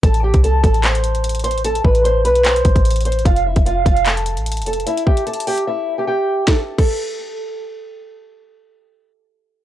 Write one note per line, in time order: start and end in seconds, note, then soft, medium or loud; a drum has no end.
0.03 0.33 A1 loud
0.03 0.20 A4 medium
0.03 0.19 A5 medium
0.03 kick loud
0.03 closed hi-hat medium
0.14 closed hi-hat medium
0.23 0.40 G4 medium
0.23 0.39 G5 medium
0.34 0.62 C2 loud
0.34 kick loud
0.34 closed hi-hat medium
0.44 0.60 A4 medium
0.44 0.60 A5 medium
0.44 closed hi-hat medium
0.64 1.80 A1 loud
0.64 0.80 A4 medium
0.64 0.80 A5 medium
0.64 kick loud
0.64 closed hi-hat medium
0.74 closed hi-hat medium
0.83 1.41 C5 medium
0.83 1.40 C6 medium
0.83 clap loud
0.83 closed hi-hat medium
0.95 closed hi-hat medium
1.04 closed hi-hat medium
1.15 closed hi-hat medium
1.24 closed hi-hat medium
1.29 closed hi-hat medium
1.35 closed hi-hat medium
1.39 closed hi-hat soft
1.44 1.60 C5 medium
1.44 1.60 C6 medium
1.44 closed hi-hat medium
1.51 closed hi-hat medium
1.58 closed hi-hat soft
1.64 1.81 A4 medium
1.64 1.80 A5 medium
1.64 closed hi-hat medium
1.75 closed hi-hat medium
1.85 2.26 A1 loud
1.85 2.01 B4 medium
1.85 2.01 B5 medium
1.85 kick medium
1.95 closed hi-hat medium
2.04 2.21 C5 medium
2.04 2.20 C6 medium
2.04 closed hi-hat medium
2.25 2.63 B1 loud
2.25 2.41 B4 medium
2.25 2.41 B5 medium
2.25 closed hi-hat medium
2.35 closed hi-hat medium
2.44 3.02 C5 medium
2.44 3.01 C6 medium
2.44 clap loud
2.44 closed hi-hat medium
2.56 closed hi-hat medium
2.65 2.75 A1 loud
2.65 kick loud
2.65 closed hi-hat medium
2.76 3.23 A1 loud
2.76 kick loud
2.76 closed hi-hat medium
2.85 closed hi-hat medium
2.90 closed hi-hat medium
2.96 closed hi-hat medium
3.01 closed hi-hat soft
3.05 3.22 C5 medium
3.05 3.21 C6 medium
3.05 closed hi-hat medium
3.12 closed hi-hat medium
3.19 closed hi-hat soft
3.25 3.55 F1 loud
3.25 3.42 F4 medium
3.25 3.42 F5 medium
3.25 kick loud
3.25 closed hi-hat medium
3.36 closed hi-hat medium
3.46 3.62 E4 medium
3.46 3.62 E5 medium
3.56 3.85 F1 loud
3.56 kick loud
3.56 closed hi-hat medium
3.66 3.82 F4 medium
3.66 3.82 F5 medium
3.66 closed hi-hat medium
3.85 4.38 F1 loud
3.85 4.02 F4 medium
3.85 4.02 F5 medium
3.85 kick loud
3.85 closed hi-hat medium
3.97 closed hi-hat medium
4.06 4.63 A4 medium
4.06 clap loud
4.06 closed hi-hat medium
4.17 closed hi-hat medium
4.26 closed hi-hat medium
4.37 4.63 A1 loud
4.37 closed hi-hat medium
4.46 closed hi-hat medium
4.52 closed hi-hat medium
4.57 closed hi-hat medium
4.62 4.85 F1 loud
4.62 closed hi-hat soft
4.66 4.83 A4 medium
4.66 4.83 A5 medium
4.66 closed hi-hat medium
4.73 closed hi-hat medium
4.80 closed hi-hat soft
4.86 5.03 E4 medium
4.86 5.03 E5 loud
4.86 closed hi-hat medium
4.97 closed hi-hat medium
5.07 5.23 G4 medium
5.07 5.23 G5 medium
5.07 kick medium
5.17 closed hi-hat medium
5.27 5.43 A4 medium
5.27 5.43 A5 medium
5.27 closed hi-hat soft
5.33 closed hi-hat medium
5.40 closed hi-hat medium
5.47 5.64 G4 medium
5.47 5.63 G5 medium
5.47 open hi-hat medium
5.58 closed hi-hat medium
5.67 5.97 E4 medium
5.67 5.96 E5 medium
5.98 6.06 G4 medium
5.98 6.05 G5 medium
6.07 6.46 G4 medium
6.07 6.45 G5 loud
6.48 6.59 A4 medium
6.48 kick loud
6.48 snare medium
6.78 7.64 A4 medium
6.78 kick loud
6.78 crash medium